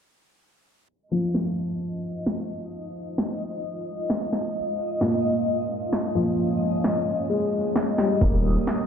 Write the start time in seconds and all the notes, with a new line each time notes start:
0.88 G#3 D#5
1.11 F3
1.21 D#4
1.29 F4
1.35 snare
1.97 C5
2.26 snare
2.34 F5
3.18 snare
4.10 snare
4.33 snare
4.71 C#4
5.01 A#2, snare
5.16 C#5
5.93 snare
6.15 A#2 F3
6.84 snare
7.30 G#3
7.76 snare
7.98 G3, snare
8.21 D#1 A#3, kick
8.36 D#4
8.52 G4
8.67 snare